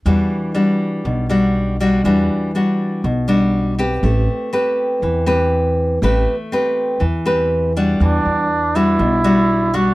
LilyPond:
<<
  \new Staff \with { instrumentName = "Flugelhorn" } { \time 4/4 \key e \minor \tempo 4 = 121 r1 | r1 | r1 | r1 |
d'4. e'2 fis'8 | }
  \new Staff \with { instrumentName = "Nylon-string guitar" } { \time 4/4 \key e \minor << { <g d' fis'>4 <g d' fis'>4. <g d' fis'>4 <g d' fis'>8 | <g d' fis'>4 <g d' fis'>4 r8 <g d' fis'>4 <c' g' b'>8~ | <c' g' b'>4 <c' g' b'>4. <c' g' b'>4. | <c' g' b'>8 r8 <c' g' b'>4 r8 <c' g' b'>4 <g d' fis'>8~ |
<g d' fis'>4 r8 <g d' fis'>4 <g d' fis'>4 <g d' fis'>8 | } \\ { e2 b,2 | e2 b,2 | a2 e2 | a2 e2 |
e2 b,2 | } >> }
  \new Staff \with { instrumentName = "Upright bass" } { \clef bass \time 4/4 \key e \minor e,8 r4. b,,2 | e,8 r4. b,,2 | a,,8 r4. e,2 | a,,8 r4. e,2 |
e,8 e,4. b,,2 | }
>>